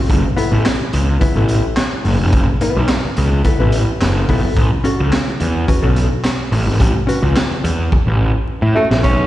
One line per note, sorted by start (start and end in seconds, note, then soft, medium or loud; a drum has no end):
0.10 0.22 F#1 medium
0.10 kick loud
0.10 closed hi-hat medium
0.36 0.55 B3 loud
0.36 0.56 E4 medium
0.36 0.56 A4 medium
0.36 closed hi-hat medium
0.52 0.63 A1 medium
0.65 snare loud
0.65 clap loud
0.65 closed hi-hat medium
0.80 muted picked electric bass stroke soft
0.93 1.17 C#2 medium
0.93 closed hi-hat medium
1.21 1.36 B3 medium
1.21 1.35 E4 medium
1.21 1.36 B4 medium
1.21 muted picked electric bass stroke soft
1.21 kick medium
1.21 closed hi-hat medium
1.35 1.59 A1 medium
1.35 1.54 B3 medium
1.35 1.53 E4 medium
1.35 1.53 A4 medium
1.48 closed hi-hat medium
1.77 snare loud
1.77 clap medium
1.77 closed hi-hat medium
2.05 2.17 F#1 medium
2.05 open hi-hat medium
2.20 2.31 F1 medium
2.33 2.46 F#1 loud
2.33 kick loud
2.33 closed hi-hat medium
2.61 2.81 B3 medium
2.61 2.82 E4 medium
2.61 2.82 B4 medium
2.61 closed hi-hat medium
2.76 2.87 B1 medium
2.88 snare loud
2.88 clap loud
2.88 closed hi-hat medium
3.05 muted picked electric bass stroke soft
3.17 3.40 C#2 loud
3.17 closed hi-hat medium
3.45 3.59 B3 medium
3.45 3.59 E4 medium
3.45 3.59 A4 medium
3.45 kick medium
3.45 closed hi-hat medium
3.60 3.83 A1 medium
3.60 3.77 B3 medium
3.60 3.77 E4 medium
3.60 3.77 B4 medium
3.72 closed hi-hat medium
4.01 4.24 F#1 loud
4.01 snare medium
4.01 clap medium
4.01 closed hi-hat medium
4.29 4.41 B1 medium
4.29 4.47 B3 medium
4.29 4.47 E4 medium
4.29 4.48 A4 loud
4.29 kick medium
4.29 open hi-hat medium
4.57 4.69 A1 medium
4.57 kick loud
4.57 closed hi-hat medium
4.84 5.03 C#4 loud
4.84 5.03 F#4 loud
4.84 5.03 A4 loud
4.84 closed hi-hat medium
5.00 5.11 C#2 loud
5.12 snare loud
5.12 clap medium
5.12 closed hi-hat medium
5.28 muted picked electric bass stroke soft
5.40 5.64 E2 medium
5.40 closed hi-hat medium
5.68 5.82 C#4 medium
5.68 5.82 F#4 medium
5.68 5.82 B4 medium
5.68 muted picked electric bass stroke soft
5.68 kick loud
5.68 closed hi-hat medium
5.82 6.06 B1 medium
5.82 6.00 C#4 medium
5.82 6.00 F#4 medium
5.82 6.00 A4 medium
5.96 closed hi-hat medium
6.24 snare loud
6.24 clap medium
6.24 closed hi-hat medium
6.52 6.68 A1 medium
6.52 open hi-hat medium
6.67 6.81 G#1 medium
6.80 6.93 A1 loud
6.80 kick loud
6.80 closed hi-hat medium
7.07 7.26 C#4 medium
7.07 7.27 F#4 medium
7.07 7.27 B4 medium
7.07 closed hi-hat medium
7.22 7.33 C#2 loud
7.36 snare loud
7.36 clap loud
7.36 closed hi-hat medium
7.51 muted picked electric bass stroke soft
7.64 7.87 E2 medium
7.64 closed hi-hat medium
7.92 muted picked electric bass stroke soft
7.92 kick medium
8.07 8.30 A1 medium
8.62 8.73 A2 loud
8.75 8.88 A3 medium
8.75 8.94 C#4 medium
8.75 8.95 F#4 medium
8.75 8.95 A4 medium
8.91 9.02 A#1 medium
8.91 snare medium
9.03 9.27 B1 medium
9.03 9.27 C#4 medium
9.03 kick loud
9.03 closed hi-hat medium